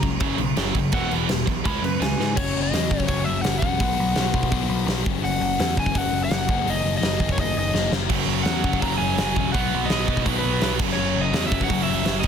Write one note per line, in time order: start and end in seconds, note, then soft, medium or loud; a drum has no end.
0.00 0.17 C#2 medium
0.00 0.19 F#2 medium
0.00 0.19 C#3 medium
0.00 0.18 A#5 loud
0.00 kick medium
0.00 crash medium
0.20 0.35 F#1 medium
0.20 0.37 F#2 medium
0.20 0.37 C#3 medium
0.20 0.38 F#3 loud
0.20 kick loud
0.20 crash medium
0.38 0.52 B1 medium
0.38 0.54 F#2 medium
0.38 0.55 C#3 medium
0.38 crash medium
0.55 0.70 F#1 medium
0.55 0.73 F#2 medium
0.55 0.74 C#3 loud
0.55 0.74 F#3 loud
0.55 snare loud
0.55 crash medium
0.74 0.89 F#1 medium
0.74 0.91 F#2 medium
0.74 0.91 C#3 medium
0.74 kick medium
0.74 crash medium
0.92 1.06 E1 loud
0.92 1.09 E2 medium
0.92 1.09 B2 medium
0.92 1.10 E3 medium
0.92 1.11 F#5 loud
0.92 kick loud
0.92 crash medium
1.10 1.24 E1 medium
1.10 1.27 E2 medium
1.10 1.28 B2 loud
1.10 1.28 E3 loud
1.10 crash medium
1.28 1.43 E1 medium
1.28 1.44 E2 medium
1.28 1.45 B2 medium
1.28 snare loud
1.28 crash medium
1.46 1.61 B1 medium
1.46 1.62 E2 medium
1.46 1.63 B2 medium
1.46 kick medium
1.46 crash medium
1.64 1.79 C#2 medium
1.64 1.81 C#3 medium
1.64 1.81 G#3 loud
1.64 1.81 C#4 loud
1.64 2.00 B5 loud
1.64 kick loud
1.64 crash medium
1.82 1.96 F#2 medium
1.82 1.99 C#3 medium
1.82 1.99 G#3 medium
1.82 2.39 B4 medium
1.82 crash medium
2.00 2.14 C#2 medium
2.00 2.16 C#3 medium
2.00 2.17 G#3 medium
2.00 2.36 G#5 loud
2.00 snare loud
2.00 crash medium
2.18 2.32 G#2 medium
2.18 2.34 C#3 medium
2.18 2.35 G#3 medium
2.18 snare medium
2.35 2.53 F#1 medium
2.35 2.70 F#2 medium
2.35 2.71 C#3 medium
2.35 2.73 F#3 loud
2.35 2.61 C#5 medium
2.35 kick loud
2.35 crash loud
2.56 2.71 F#1 medium
2.62 3.07 D#5 medium
2.72 2.88 E2 medium
2.72 2.89 F#2 medium
2.72 2.90 C#3 medium
2.72 2.91 F#3 loud
2.72 snare loud
2.72 open hi-hat medium
2.91 3.06 F#1 loud
2.91 3.06 F#2 medium
2.91 3.07 C#3 loud
2.91 3.08 F#3 loud
2.91 kick medium
3.00 kick medium
3.07 3.24 F#1 medium
3.07 3.42 F#2 loud
3.07 3.43 C#3 loud
3.07 3.44 F#3 loud
3.07 3.24 C#5 loud
3.07 kick loud
3.07 open hi-hat medium
3.24 3.42 F#1 medium
3.24 3.41 E5 medium
3.41 3.60 F#2 loud
3.41 3.60 C#3 loud
3.41 3.61 F#3 loud
3.41 3.58 F#5 loud
3.41 snare loud
3.41 open hi-hat medium
3.46 3.61 F#1 medium
3.59 3.78 E1 medium
3.59 3.79 F#2 medium
3.59 3.79 C#3 medium
3.59 3.79 F#3 medium
3.59 5.00 F#5 loud
3.59 kick medium
3.79 3.96 B1 loud
3.79 4.13 B2 medium
3.79 4.14 F#3 loud
3.79 4.14 B3 loud
3.79 kick loud
3.79 open hi-hat medium
3.99 4.14 B1 loud
4.14 4.32 B1 loud
4.14 4.31 B2 medium
4.14 4.33 F#3 loud
4.14 4.32 B3 medium
4.14 snare loud
4.14 open hi-hat medium
4.33 4.49 B1 loud
4.33 4.49 B2 medium
4.33 4.51 F#3 loud
4.33 4.51 B3 loud
4.33 kick loud
4.43 kick medium
4.51 4.67 B1 medium
4.51 4.85 B2 loud
4.51 4.86 F#3 loud
4.51 4.86 B3 loud
4.51 kick loud
4.51 open hi-hat medium
4.69 4.85 B1 medium
4.86 5.02 B1 loud
4.86 5.04 B2 loud
4.86 5.05 F#3 loud
4.86 5.04 B3 loud
4.86 snare loud
4.86 open hi-hat medium
5.05 5.22 F#1 medium
5.05 5.22 F#2 loud
5.05 5.21 C#3 loud
5.05 5.23 F#3 loud
5.05 kick loud
5.22 5.39 F#1 loud
5.22 5.57 F#2 loud
5.22 5.56 C#3 loud
5.22 5.58 F#3 loud
5.22 5.74 F#5 loud
5.22 open hi-hat medium
5.40 5.56 F#1 loud
5.58 5.75 E2 loud
5.58 5.76 F#2 medium
5.58 5.76 C#3 medium
5.58 5.77 F#3 loud
5.58 snare loud
5.58 open hi-hat medium
5.77 5.93 F#1 loud
5.77 5.95 F#2 loud
5.77 5.94 C#3 loud
5.77 5.95 F#3 loud
5.77 5.98 G#5 loud
5.77 kick medium
5.86 kick medium
5.95 6.11 F#1 medium
5.95 6.29 F#2 loud
5.95 6.29 C#3 loud
5.95 6.30 F#3 loud
5.95 6.23 F#5 loud
5.95 kick loud
5.95 open hi-hat medium
6.13 6.28 F#1 loud
6.24 6.69 F#5 loud
6.30 6.46 F#1 loud
6.30 8.08 F#2 loud
6.30 6.47 C#3 loud
6.30 6.49 F#3 loud
6.30 snare loud
6.30 open hi-hat medium
6.48 6.65 F#1 medium
6.48 6.64 D#3 loud
6.48 6.65 A#3 loud
6.48 6.65 D#4 loud
6.48 kick loud
6.65 6.82 F#1 loud
6.65 6.99 D#3 loud
6.65 7.01 A#3 loud
6.65 7.00 D#4 loud
6.65 open hi-hat medium
6.70 6.93 D#5 loud
6.84 7.00 F#1 loud
6.97 7.17 D#3 medium
6.97 7.19 A#3 medium
6.97 7.18 D#4 medium
6.97 7.29 D#5 loud
7.02 7.18 F#1 loud
7.02 snare loud
7.02 open hi-hat medium
7.19 7.36 F#1 loud
7.19 7.37 D#3 medium
7.19 7.37 A#3 medium
7.19 7.37 D#4 loud
7.19 kick medium
7.29 7.40 C#5 medium
7.29 kick medium
7.38 7.54 F#1 medium
7.38 7.72 D#3 medium
7.38 7.72 A#3 loud
7.38 7.73 D#4 loud
7.38 7.58 D#5 loud
7.38 kick loud
7.38 open hi-hat medium
7.56 7.72 F#1 medium
7.56 7.91 D#5 medium
7.73 7.90 F#1 loud
7.73 7.90 D#3 medium
7.73 7.91 A#3 loud
7.73 7.91 D#4 loud
7.73 snare medium
7.92 8.08 F#1 medium
7.92 8.09 D#3 medium
7.92 8.09 A#3 medium
7.92 8.09 D#4 medium
7.92 snare loud
8.08 8.26 F#1 medium
8.08 8.44 F#2 loud
8.08 8.45 C#3 loud
8.08 8.46 F#3 loud
8.08 kick loud
8.08 open hi-hat medium
8.08 crash loud
8.28 8.44 F#1 medium
8.43 8.62 E2 loud
8.43 8.64 F#2 medium
8.43 8.64 C#3 medium
8.43 8.65 F#3 medium
8.43 8.78 F#5 loud
8.43 snare loud
8.43 open hi-hat medium
8.64 8.80 F#1 loud
8.64 8.80 F#2 medium
8.64 8.81 C#3 loud
8.64 8.82 F#3 medium
8.64 kick medium
8.73 kick medium
8.81 8.98 F#1 medium
8.81 9.16 F#2 medium
8.81 9.17 C#3 medium
8.81 9.18 F#3 loud
8.81 8.97 A#5 loud
8.81 kick loud
8.81 open hi-hat medium
8.98 9.16 F#1 medium
8.98 9.52 G#5 loud
9.17 9.34 F#1 loud
9.17 9.33 F#2 medium
9.17 9.34 C#3 loud
9.17 9.35 F#3 loud
9.17 snare loud
9.17 open hi-hat medium
9.35 9.52 E1 medium
9.35 9.52 F#2 medium
9.35 9.53 C#3 medium
9.35 9.54 F#3 medium
9.35 kick medium
9.52 9.70 B1 loud
9.52 9.88 B2 loud
9.52 9.90 F#3 medium
9.52 9.89 B3 loud
9.52 9.87 F#5 loud
9.52 kick loud
9.52 open hi-hat medium
9.74 9.89 B1 loud
9.85 10.21 D#5 loud
9.90 10.07 B1 loud
9.90 10.05 B2 medium
9.90 10.07 F#3 medium
9.90 10.07 B3 medium
9.90 snare loud
9.90 open hi-hat medium
10.07 10.24 B1 loud
10.07 10.23 B2 medium
10.07 10.24 F#3 medium
10.07 10.24 B3 loud
10.07 kick medium
10.17 kick medium
10.24 10.42 B1 medium
10.24 10.59 B2 loud
10.24 10.60 F#3 loud
10.24 10.60 B3 loud
10.24 kick loud
10.24 open hi-hat medium
10.38 10.74 B4 medium
10.44 10.60 B1 loud
10.61 10.77 B1 loud
10.61 10.77 B2 loud
10.61 10.78 F#3 loud
10.61 10.78 B3 loud
10.61 snare loud
10.61 open hi-hat medium
10.77 10.96 F#1 loud
10.77 10.94 F#2 medium
10.77 10.95 C#3 loud
10.77 10.95 F#3 loud
10.77 kick loud
10.77 crash loud
10.92 11.30 F#2 loud
10.92 11.30 C#3 loud
10.92 11.23 C#5 loud
10.97 11.13 F#1 loud
10.97 11.31 F#3 loud
11.16 11.32 F#1 loud
11.21 11.47 D#5 loud
11.31 11.49 E2 loud
11.31 11.48 F#2 loud
11.31 11.49 C#3 loud
11.31 11.49 F#3 loud
11.31 snare loud
11.31 open hi-hat medium
11.47 11.66 F#2 medium
11.47 11.67 C#3 medium
11.47 11.67 F#3 loud
11.47 11.64 E5 loud
11.52 11.67 F#1 medium
11.52 kick medium
11.61 11.83 F#5 loud
11.61 kick medium
11.67 11.86 F#1 medium
11.67 12.02 F#2 loud
11.67 12.03 C#3 loud
11.67 12.03 F#3 loud
11.67 kick loud
11.67 open hi-hat medium
11.83 12.20 E5 medium
11.88 12.04 F#1 loud
12.03 12.22 F#1 medium
12.03 12.22 F#2 medium
12.03 12.22 C#3 medium
12.03 12.22 F#3 loud
12.03 snare loud
12.03 open hi-hat medium
12.20 12.27 F#1 medium
12.20 12.27 D#3 loud
12.20 12.27 A#3 loud
12.20 12.27 D#4 loud
12.20 12.27 D#5 loud
12.20 kick loud
12.20 crash loud